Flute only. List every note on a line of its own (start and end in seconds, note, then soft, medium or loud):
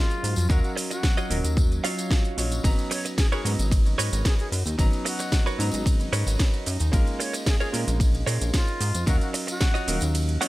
0.00 0.47 F4 loud
0.49 0.59 F#4 medium
0.63 0.72 F#4 medium
0.90 1.44 F#4 loud
2.91 3.06 C#5 loud
3.18 3.27 G#4 medium
3.32 3.40 G#4 medium
4.25 4.34 G#4 medium
4.39 4.47 G#4 medium
5.06 5.46 F#4 medium
7.20 7.34 C#5 loud
7.47 7.56 G#4 medium
7.61 7.69 G#4 medium
8.54 9.05 F4 loud
9.08 9.17 F#4 medium
9.22 9.30 F#4 medium
9.49 10.02 F#4 loud